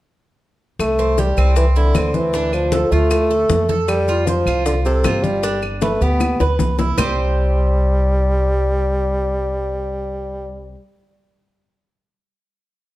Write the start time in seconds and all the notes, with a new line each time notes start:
0.79 C2 A3, high bongo, high conga, claves, maracas
0.99 C4, high conga, maracas
1.18 G3 G4, high bongo, high conga, maracas
1.37 C2 C4, claves, maracas
1.56 E3, high bongo, high conga, maracas
1.76 D3 E4, high conga, maracas
1.95 D2 C4, high bongo, low bongo, high conga, claves, maracas
2.14 E3, high conga, maracas
2.33 D4, high bongo, high conga, maracas
2.53 F3, high bongo, high conga, claves, maracas
2.72 A4, high bongo, high conga, maracas
2.91 D2 A3 F4, high bongo, high conga, maracas
3.11 high bongo, high conga, claves, maracas
3.30 A4, high conga, maracas
3.49 F2, high bongo, low bongo, high conga, maracas
3.69 A4, high bongo, high conga, maracas
3.88 G3, high bongo, high conga, claves, maracas
4.08 F4, high conga, maracas
4.27 F3 C5, high bongo, high conga, maracas
4.46 C2 F4, claves, maracas
4.66 D3, high bongo, high conga, maracas
4.85 C3 A4, high conga, maracas
5.04 G1 F4, high bongo, low bongo, high conga, claves, maracas
5.23 G3, high conga, maracas
5.43 D4, high bongo, high conga, maracas
5.62 high bongo, high conga, claves, maracas
5.81 A3 B4, high bongo, high conga, maracas
6.01 D2 B3 G4, high conga, maracas
6.20 low bongo, high conga, claves, maracas
6.40 D2 B4, low bongo, high conga, maracas
6.59 C2, low bongo, high conga, maracas
6.79 E4, low bongo, high conga, maracas
6.98 C2 G3 C4 G4 C5, low bongo, low conga, claves, maracas